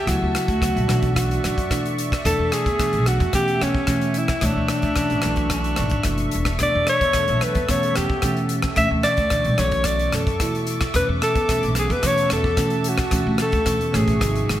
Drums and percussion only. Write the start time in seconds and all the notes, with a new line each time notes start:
0.07 kick, cross-stick, closed hi-hat
0.35 cross-stick, closed hi-hat
0.48 kick, closed hi-hat
0.62 kick, cross-stick, closed hi-hat
0.77 closed hi-hat
0.89 cross-stick, closed hi-hat
1.02 kick, closed hi-hat
1.16 kick, cross-stick, closed hi-hat
1.31 closed hi-hat
1.44 cross-stick, closed hi-hat
1.58 kick, closed hi-hat
1.71 kick, cross-stick, closed hi-hat
1.86 closed hi-hat
1.98 closed hi-hat
2.12 kick, cross-stick, closed hi-hat
2.25 kick, cross-stick, closed hi-hat
2.52 cross-stick, closed hi-hat
2.66 kick, closed hi-hat
2.79 kick, cross-stick, closed hi-hat
2.93 closed hi-hat
3.06 cross-stick, closed hi-hat
3.20 kick, closed hi-hat
3.33 kick, cross-stick, closed hi-hat
3.48 closed hi-hat
3.62 cross-stick, closed hi-hat
3.75 kick
3.87 kick, cross-stick, closed hi-hat
4.01 closed hi-hat
4.14 closed hi-hat
4.28 kick, cross-stick, closed hi-hat
4.41 kick, cross-stick, closed hi-hat
4.68 cross-stick, closed hi-hat
4.82 kick, closed hi-hat
4.96 kick, cross-stick, closed hi-hat
5.10 closed hi-hat
5.22 cross-stick, closed hi-hat
5.36 kick, closed hi-hat
5.50 kick, cross-stick, closed hi-hat
5.64 closed hi-hat
5.76 cross-stick, closed hi-hat
5.90 kick, closed hi-hat
6.03 kick, cross-stick, closed hi-hat
6.18 closed hi-hat
6.31 closed hi-hat
6.45 kick, cross-stick, closed hi-hat
6.59 kick, cross-stick, closed hi-hat
6.87 cross-stick, closed hi-hat
7.01 kick, closed hi-hat
7.13 kick, cross-stick, closed hi-hat
7.28 closed hi-hat
7.41 cross-stick, closed hi-hat
7.55 kick, closed hi-hat
7.69 kick, cross-stick, closed hi-hat
7.83 closed hi-hat
7.96 cross-stick, closed hi-hat
8.10 kick
8.22 kick, cross-stick, closed hi-hat
8.37 closed hi-hat
8.49 closed hi-hat
8.62 kick, cross-stick, closed hi-hat
8.76 kick, cross-stick, closed hi-hat
9.03 cross-stick, closed hi-hat
9.17 kick, closed hi-hat
9.30 kick, cross-stick, closed hi-hat
9.45 closed hi-hat
9.58 cross-stick, closed hi-hat
9.71 kick, closed hi-hat
9.84 kick, cross-stick, closed hi-hat
9.99 closed hi-hat
10.12 cross-stick, closed hi-hat
10.27 kick, closed hi-hat
10.40 kick, cross-stick, closed hi-hat
10.55 closed hi-hat
10.67 closed hi-hat
10.81 kick, cross-stick, closed hi-hat
10.94 kick, cross-stick, closed hi-hat
11.22 cross-stick, closed hi-hat
11.35 kick, closed hi-hat
11.49 kick, cross-stick, closed hi-hat
11.63 closed hi-hat
11.75 cross-stick, closed hi-hat
11.90 kick, closed hi-hat
12.03 kick, cross-stick, closed hi-hat
12.18 closed hi-hat
12.30 cross-stick, closed hi-hat
12.44 kick
12.57 kick, cross-stick, closed hi-hat
12.70 closed hi-hat
12.84 closed hi-hat
12.98 kick, cross-stick, closed hi-hat
13.11 kick, cross-stick, closed hi-hat
13.38 cross-stick, closed hi-hat
13.52 kick, closed hi-hat
13.66 kick, cross-stick, closed hi-hat
13.81 closed hi-hat
13.94 cross-stick, closed hi-hat
14.08 kick, closed hi-hat
14.21 kick, cross-stick, closed hi-hat
14.35 closed hi-hat
14.49 cross-stick, closed hi-hat